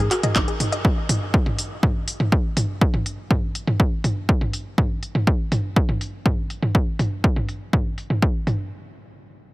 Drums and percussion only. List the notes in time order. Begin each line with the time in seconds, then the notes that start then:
0.11 clap, open hi-hat
0.23 closed hi-hat, mid tom
0.36 kick, clap, closed hi-hat
0.48 closed hi-hat
0.60 mid tom, open hi-hat
0.72 closed hi-hat
0.85 kick
1.09 mid tom, open hi-hat
1.34 kick
1.46 mid tom
1.59 open hi-hat
1.83 kick, mid tom
2.08 open hi-hat
2.20 mid tom
2.32 kick
2.57 mid tom, open hi-hat
2.81 kick
2.94 mid tom
3.06 open hi-hat
3.31 kick, mid tom
3.55 open hi-hat
3.67 mid tom
3.80 kick
4.04 mid tom, open hi-hat
4.29 kick
4.41 mid tom
4.53 open hi-hat
4.78 kick, mid tom
5.03 open hi-hat
5.15 mid tom
5.27 kick
5.52 mid tom, open hi-hat
5.76 kick
5.89 mid tom
6.01 open hi-hat
6.26 kick, mid tom
6.50 open hi-hat
6.63 mid tom
6.75 kick
6.99 mid tom, open hi-hat
7.24 kick
7.36 mid tom
7.49 open hi-hat
7.73 kick, mid tom
7.98 open hi-hat
8.10 mid tom
8.22 kick
8.47 mid tom, open hi-hat